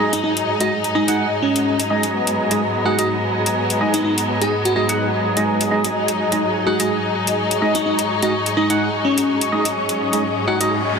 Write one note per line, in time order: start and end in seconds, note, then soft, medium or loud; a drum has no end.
0.00 10.99 G#2 medium
0.00 10.99 F#3 medium
0.00 0.12 G#3 medium
0.00 0.12 D#4 medium
0.00 2.13 D#4 medium
0.00 0.12 G#4 medium
0.00 10.99 G#4 medium
0.00 0.12 D#5 medium
0.00 10.99 D#5 medium
0.00 7.23 A#5 medium
0.13 0.20 D#4 medium
0.13 closed hi-hat medium
0.24 0.32 D#4 medium
0.37 closed hi-hat soft
0.60 0.71 G#3 medium
0.60 0.71 D#4 medium
0.60 0.71 F#4 medium
0.60 0.71 G#4 medium
0.60 0.71 D#5 loud
0.60 closed hi-hat medium
0.84 closed hi-hat soft
0.95 1.06 G#3 medium
0.95 1.03 D#4 medium
0.95 1.06 D#4 medium
0.95 1.06 G#4 medium
0.95 1.06 D#5 medium
1.08 1.26 G#3 medium
1.08 1.15 D#4 medium
1.08 1.26 D#4 medium
1.08 1.26 G#4 medium
1.08 1.26 F#5 medium
1.08 closed hi-hat medium
1.42 1.80 C#4 medium
1.56 closed hi-hat medium
1.80 closed hi-hat soft
1.90 2.03 G#3 medium
1.90 2.03 D#4 medium
1.90 2.03 G#4 medium
1.90 2.03 D#5 medium
2.03 closed hi-hat medium
2.14 5.94 B3 medium
2.27 closed hi-hat soft
2.51 2.61 G#3 medium
2.51 2.61 D#4 medium
2.51 2.61 G#4 medium
2.51 2.61 D#5 medium
2.51 closed hi-hat medium
2.85 2.97 G#3 medium
2.85 2.97 D#4 medium
2.85 2.94 F#4 medium
2.85 2.97 G#4 medium
2.85 2.97 F#5 loud
2.98 3.16 G#3 medium
2.98 3.16 D#4 medium
2.98 3.05 F#4 medium
2.98 3.16 G#4 medium
2.98 3.16 D#5 loud
2.98 closed hi-hat medium
3.46 closed hi-hat medium
3.70 closed hi-hat soft
3.81 3.93 G#3 medium
3.81 3.93 D#4 medium
3.81 3.93 G#4 medium
3.81 3.93 D#5 medium
3.94 4.01 D#4 medium
3.94 closed hi-hat medium
4.05 4.13 D#4 medium
4.18 closed hi-hat soft
4.41 4.52 G#3 medium
4.41 4.52 D#4 medium
4.41 4.52 G#4 medium
4.41 4.63 G#4 medium
4.41 4.52 D#5 loud
4.41 closed hi-hat medium
4.65 4.72 F#4 medium
4.65 closed hi-hat soft
4.76 4.87 G#3 medium
4.76 4.87 D#4 medium
4.76 4.84 F#4 medium
4.76 4.87 G#4 medium
4.76 4.87 D#5 loud
4.89 5.07 G#3 medium
4.89 5.07 D#4 medium
4.89 5.07 G#4 medium
4.89 5.07 F#5 loud
4.89 closed hi-hat medium
5.37 5.69 G#3 medium
5.37 5.69 D#4 medium
5.37 5.69 G#4 medium
5.37 5.69 D#5 medium
5.37 closed hi-hat medium
5.61 closed hi-hat soft
5.71 5.84 G#3 medium
5.71 5.84 D#4 medium
5.71 5.84 G#4 medium
5.71 5.84 D#5 loud
5.84 closed hi-hat medium
5.95 9.75 D#4 medium
6.08 closed hi-hat soft
6.32 6.42 G#3 medium
6.32 6.42 D#4 medium
6.32 6.42 G#4 medium
6.32 6.42 D#5 medium
6.32 closed hi-hat medium
6.67 6.78 G#3 medium
6.67 6.78 D#4 medium
6.67 6.75 F#4 medium
6.67 6.78 G#4 medium
6.67 6.78 F#5 medium
6.80 6.97 G#3 medium
6.80 6.97 D#4 medium
6.80 6.87 F#4 medium
6.80 6.97 G#4 medium
6.80 6.97 D#5 loud
6.80 closed hi-hat medium
7.20 10.99 C#6 medium
7.27 closed hi-hat medium
7.51 closed hi-hat soft
7.62 7.74 G#3 medium
7.62 7.74 D#4 medium
7.62 7.74 G#4 medium
7.62 7.74 D#5 medium
7.75 7.82 D#4 medium
7.75 closed hi-hat medium
7.86 7.94 D#4 medium
7.99 closed hi-hat medium
8.23 8.33 G#3 medium
8.23 8.33 D#4 medium
8.23 8.33 F#4 medium
8.23 8.33 G#4 medium
8.23 8.33 D#5 loud
8.23 closed hi-hat medium
8.46 closed hi-hat soft
8.57 8.68 G#3 medium
8.57 8.68 D#4 medium
8.57 8.65 D#4 medium
8.57 8.68 G#4 medium
8.57 8.68 D#5 medium
8.70 8.88 G#3 medium
8.70 8.77 D#4 medium
8.70 8.88 D#4 medium
8.70 8.88 G#4 medium
8.70 8.88 F#5 loud
8.70 closed hi-hat medium
9.05 9.42 C#4 medium
9.18 closed hi-hat medium
9.41 closed hi-hat soft
9.52 9.65 G#3 medium
9.52 9.65 D#4 medium
9.52 9.65 G#4 medium
9.52 9.65 D#5 medium
9.65 closed hi-hat medium
9.76 10.99 C#4 medium
9.76 riser medium
9.89 closed hi-hat soft
10.13 10.23 G#3 medium
10.13 10.23 D#4 medium
10.13 10.23 G#4 medium
10.13 10.23 D#5 medium
10.13 closed hi-hat medium
10.47 10.59 G#3 medium
10.47 10.59 D#4 medium
10.47 10.56 F#4 medium
10.47 10.59 G#4 medium
10.47 10.59 F#5 loud
10.61 10.78 G#3 medium
10.61 10.78 D#4 medium
10.61 10.67 F#4 medium
10.61 10.78 G#4 medium
10.61 10.78 D#5 loud
10.61 closed hi-hat medium